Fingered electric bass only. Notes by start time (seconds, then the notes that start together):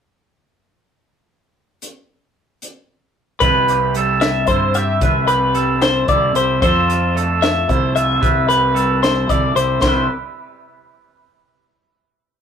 3.41 C2
4.48 G2
5.01 C2
6.08 C2
6.35 C2
6.62 F2
7.69 C2
8.23 C2
9.30 C2
9.55 C2
9.83 C2